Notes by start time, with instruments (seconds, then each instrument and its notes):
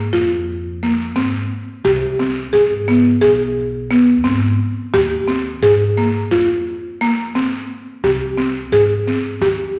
0.13 upright bass F2, marimba F4
0.83 marimba A#3
1.16 upright bass G#2, marimba C4
1.84 upright bass C2, marimba G4
2.19 marimba C4
2.53 upright bass G#2, marimba G#4
2.88 marimba B3
3.21 upright bass B1, marimba G#4
3.91 marimba B3
4.24 upright bass G#2, marimba C4
4.94 upright bass D#2, marimba G4
5.28 marimba C4
5.62 upright bass G#2, marimba G#4
5.97 marimba A#3
6.31 upright bass F2, marimba F4
7.01 marimba A#3
7.34 upright bass G#2, marimba C4
8.04 upright bass C2, marimba G4
8.38 marimba C4
8.72 upright bass G#2, marimba G#4
9.07 marimba C4
9.41 upright bass D#2, marimba G4